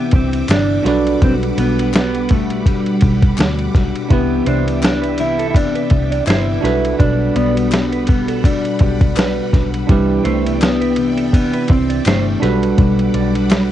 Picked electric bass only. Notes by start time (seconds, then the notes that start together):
0.13 C2
0.49 G1
0.85 B1
1.22 B1
1.58 B1
3.02 B1
3.39 D2
3.74 B1
4.11 C2
4.47 C2
5.91 C2
6.27 G1
6.64 B1
7.00 B1
7.36 B1
8.81 B1
9.53 B1
9.89 C2
10.25 C2
11.70 C2
12.06 G1
12.43 B1
12.78 B1
13.14 B1